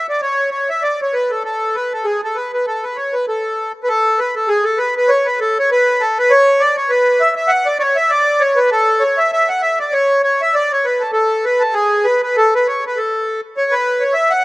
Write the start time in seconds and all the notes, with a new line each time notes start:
0.09 D5
0.22 C#5
0.51 C#5
0.70 E5
0.82 D5
1.02 C#5
1.13 B4
1.30 A4
1.45 A4
1.75 B4
1.93 A4
2.05 G#4
2.24 A4
2.35 B4
2.54 B4
2.67 A4
2.84 B4
2.97 C#5
3.13 B4
3.28 A4
3.83 B4
3.89 A4
4.19 B4
4.36 A4
4.48 G#4
4.64 A4
4.78 B4
4.97 B4
5.08 C#5
5.26 B4
5.40 A4
5.59 C#5
5.72 B4
6.01 A4
6.19 B4
6.31 C#5
6.60 D5
6.77 C#5
6.90 B4
7.20 E5
7.36 E5
7.47 F#5
7.66 D5
7.79 C#5 D5
7.96 E5
8.10 D5
8.40 C#5
8.56 B4
8.71 A4
9.00 C#5
9.18 E5
9.33 E5
9.48 F#5
9.62 E5
9.79 D5
9.93 C#5
10.23 C#5
10.42 E5
10.54 D5
10.73 C#5
10.85 B4
11.00 A4
11.13 A4
11.45 B4
11.59 A4
11.74 G#4
12.04 B4
12.23 B4
12.37 A4
12.55 B4
12.68 C#5
12.87 B4
12.97 A4
13.57 C#5
13.72 B4
14.00 C#5
14.13 E5
14.30 F#5